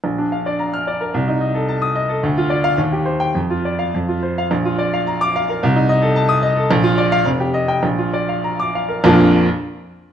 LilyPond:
\new Staff \with { instrumentName = "Grand piano" } { \time 2/4 \key bes \major \tempo 4 = 107 << { r4 r16 f'''8 r16 | r4 r16 ees'''8 r16 | r8. f''16 r8. g''16 | r8. f''16 r8. f''16 |
r4 r16 d'''8 r16 | r4 r16 ees'''8 r16 | r8. f''16 r8. g''16 | r4 r16 d'''8 r16 |
<bes,, f, f bes d' f'>8 r4. | } \\ { bes,,16 d'16 f''16 d''16 bes''8 d''16 bes'16 | c,16 ees'16 ees''16 a'16 a''8 ees''16 a'16 | d,16 f'16 d''8 ees,16 g'16 c''8 | f,16 f'16 d''8 f,16 f'16 c''8 |
bes,,16 f'16 d''16 f''16 bes''8 f''16 bes'16 | c,16 ees'16 ees''16 a'16 a''8 ees''16 a'16 | bes,,16 f'16 d''8 f,,16 g'16 ees''8 | bes,,16 f'16 d''16 f''16 bes''8 f''16 bes'16 |
r2 | } >> }